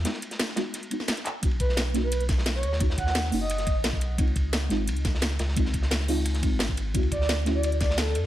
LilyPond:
<<
  \new Staff \with { instrumentName = "Soft synth lead" } { \time 4/4 \key b \major \tempo 4 = 174 r1 | r8 b'8 r8. b'8 r4 cis''8 r16 | r8 fis''8 r8. dis''4 r4 r16 | r1 |
r1 | r8 d''8 r8. d''8 r16 d''8 a'8 r8 | }
  \new Staff \with { instrumentName = "Synth stab" } { \time 4/4 \key b \major <gis b dis' fis'>4. <gis b dis' fis'>4 <gis b dis' fis'>4. | <ais cis' dis' fis'>4. <ais cis' dis' fis'>2~ <ais cis' dis' fis'>8 | <ais cis' dis' fis'>4. <ais cis' dis' fis'>2~ <ais cis' dis' fis'>8 | <gis bis dis' eis'>4. <gis bis dis' eis'>2~ <gis bis dis' eis'>8 |
<gis bis dis' eis'>4. <gis bis dis' eis'>4 <gis bis dis' eis'>4. | <a cis' e' fis'>4. <a cis' e' fis'>2~ <a cis' e' fis'>8 | }
  \new Staff \with { instrumentName = "Sub bass" } { \clef bass \time 4/4 \key b \major r1 | b,,2.~ b,,8 dis,8~ | dis,4. fis,,4~ fis,,16 b,,4~ b,,16 | cis,4. gis,,8 cis,4. cis,8~ |
cis,2~ cis,8 gis,,4. | d,2.~ d,8 fis,8 | }
  \new DrumStaff \with { instrumentName = "Drums" } \drummode { \time 4/4 <hh cymr sn>16 sn16 <hh cymr>16 <hh sn>16 <hh cymr sn>16 sn16 <hh cymr sn>8 <hh cymr sn>16 hh16 <hh cymr>16 sn16 <hh cymr sn>16 <hh sn>16 <hc hh cymr>8 | <hh bd cymr>16 cymr16 <hh bd cymr>16 sn16 <hh cymr sn>8 <hh cymr sn>8 <hh cymr>16 hh16 <hh bd cymr sn>16 sn16 <hh cymr sn>16 sn16 <hh cymr>16 sn16 | <hh bd cymr>16 sn16 <hh bd cymr>16 sn16 <hh cymr sn>16 sn16 hho8 <hh cymr>16 <hh sn>16 <hh bd cymr>8 <hh cymr sn>16 <bd sn>16 <hh cymr>8 | <hh bd cymr>16 cymr16 <hh bd cymr>8 <hh cymr sn>8 <hh cymr sn>8 <hh cymr>16 hh16 <hh bd cymr sn>16 sn16 <hh cymr sn>16 sn16 <hh cymr sn>16 sn16 |
<hh bd cymr>16 sn16 <hh bd cymr>16 sn16 <hh cymr sn>16 sn16 hho8 <hh cymr>16 <hh sn>16 <hh bd cymr>8 <hh cymr sn>16 <bd sn>16 <hh cymr>8 | <hh bd cymr>16 cymr16 <hh bd cymr>16 sn16 <hh cymr sn>8 <hh cymr sn>8 <hh cymr>16 hh16 <hh bd cymr sn>16 sn16 <hh cymr sn>16 sn16 <hh cymr>8 | }
>>